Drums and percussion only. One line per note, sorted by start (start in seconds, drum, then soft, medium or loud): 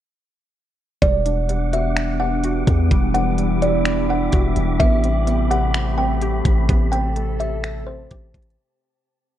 1.02 kick loud
1.02 closed hi-hat medium
1.26 closed hi-hat medium
1.49 closed hi-hat medium
1.73 closed hi-hat medium
1.97 finger snap loud
1.97 closed hi-hat medium
2.44 closed hi-hat medium
2.67 kick medium
2.67 closed hi-hat medium
2.91 kick loud
2.91 closed hi-hat medium
3.15 closed hi-hat medium
3.38 closed hi-hat medium
3.62 closed hi-hat medium
3.85 finger snap loud
3.85 closed hi-hat medium
4.32 kick loud
4.32 closed hi-hat medium
4.56 closed hi-hat medium
4.80 kick loud
4.80 closed hi-hat medium
5.04 closed hi-hat medium
5.27 closed hi-hat medium
5.51 closed hi-hat medium
5.74 finger snap loud
5.74 closed hi-hat medium
6.22 closed hi-hat medium
6.45 kick medium
6.45 closed hi-hat medium
6.69 kick loud
6.69 closed hi-hat medium
6.93 closed hi-hat medium
7.16 closed hi-hat medium
7.40 closed hi-hat medium
7.64 finger snap loud
7.64 closed hi-hat medium
8.11 kick loud
8.11 closed hi-hat medium
8.34 kick medium
8.34 closed hi-hat medium
8.42 closed hi-hat medium
8.50 closed hi-hat medium